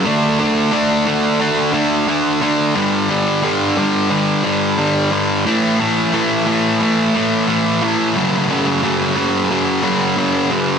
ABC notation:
X:1
M:4/4
L:1/8
Q:1/4=89
K:Amix
V:1 name="Distorted electric guitar" clef=bass
[D,A,D] [D,A,D] [D,A,D] [D,A,D] [D,A,D] [D,A,D] [D,A,D] [D,A,D] | [G,,D,G,] [G,,D,G,] [G,,D,G,] [G,,D,G,] [G,,D,G,] [G,,D,G,] [G,,D,G,] [G,,D,G,] | [A,,E,A,] [A,,E,A,] [A,,E,A,] [A,,E,A,] [A,,E,A,] [A,,E,A,] [A,,E,A,] [A,,E,A,] | [F,,C,F,] [F,,C,F,] [F,,C,F,] [F,,C,F,] [F,,C,F,] [F,,C,F,] [F,,C,F,] [F,,C,F,] |]